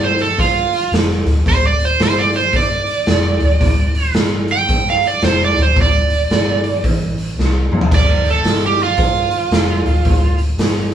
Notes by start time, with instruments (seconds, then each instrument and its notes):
Already playing: fingered electric bass G1
0.04 electric slide guitar C5
0.18 electric slide guitar A4, open hi-hat
0.39 electric slide guitar F4, kick, open hi-hat
0.72 open hi-hat
0.92 fingered electric bass F1, snare, open hi-hat
1.11 snare
1.25 fingered electric bass D1, open hi-hat
1.46 fingered electric bass D1, electric slide guitar C5, kick, open hi-hat
1.67 electric slide guitar D5
1.80 open hi-hat
1.85 electric slide guitar C5
1.99 fingered electric bass G1, snare, open hi-hat
2.04 electric slide guitar C5
2.18 electric slide guitar D5
2.33 electric slide guitar C5, open hi-hat
2.53 electric slide guitar D5, kick, open hi-hat
2.86 open hi-hat
3.06 fingered electric bass F1, snare, open hi-hat
3.40 fingered electric bass D1, open hi-hat
3.61 fingered electric bass D1, kick, open hi-hat
3.95 open hi-hat
4.14 fingered electric bass G1, snare, open hi-hat
4.48 open hi-hat
4.52 electric slide guitar G5
4.69 kick, open hi-hat
4.86 electric slide guitar F5, snare
5.03 open hi-hat
5.07 electric slide guitar D5
5.22 fingered electric bass F1, electric slide guitar C5, snare, open hi-hat
5.40 snare
5.45 electric slide guitar D5
5.56 fingered electric bass D1, open hi-hat
5.62 electric slide guitar C5
5.76 fingered electric bass D1, kick, open hi-hat
5.82 electric slide guitar D5
6.10 open hi-hat
6.30 fingered electric bass G1, snare, open hi-hat
6.64 open hi-hat
6.84 fingered electric bass A1, kick, open hi-hat
7.18 open hi-hat
7.38 fingered electric bass C2, snare
7.70 fingered electric bass G1, mid tom
7.81 floor tom
7.91 fingered electric bass D1, electric slide guitar D5, kick, open hi-hat, crash
8.25 open hi-hat
8.30 electric slide guitar A4
8.44 fingered electric bass G1, snare, open hi-hat
8.66 electric slide guitar G4
8.78 open hi-hat
8.83 electric slide guitar F4
8.97 kick, open hi-hat
9.31 open hi-hat
9.51 fingered electric bass F1, snare, open hi-hat
9.85 fingered electric bass D1, open hi-hat
10.05 fingered electric bass D1, kick, open hi-hat
10.38 open hi-hat
10.58 fingered electric bass G1, snare, open hi-hat